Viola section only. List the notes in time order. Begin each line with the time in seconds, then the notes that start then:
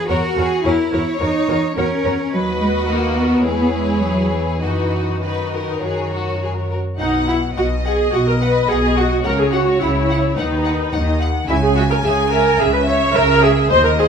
0.09 F#4 A#4
0.37 F#4 A#4
0.64 F#4 A#4
0.93 F#4 A#4
1.20 F#4 A#4
1.48 F#4 A#4
1.77 F#4 A#4
2.05 F#4 A#4
2.33 F#4 B4
2.90 A#4
3.45 E4 G#4
4.62 D#4 F#4
5.22 D#4 F#4
5.82 F#4
6.99 D#4
7.28 E4
7.57 F#4
7.85 G#4
8.13 F#4
8.27 A#4
8.41 B4
8.69 G#4
8.97 F#4
9.25 A#4
9.40 G#4
9.52 F#4
9.80 E4
10.37 D#4
11.49 E4
11.63 G#4
11.76 F#4
11.90 A#4
12.04 G#4
12.31 A#4
12.60 G#4
12.73 B4
12.87 C#5
13.15 A#4
13.43 G#4
13.70 C5
13.84 A#4
13.98 G#4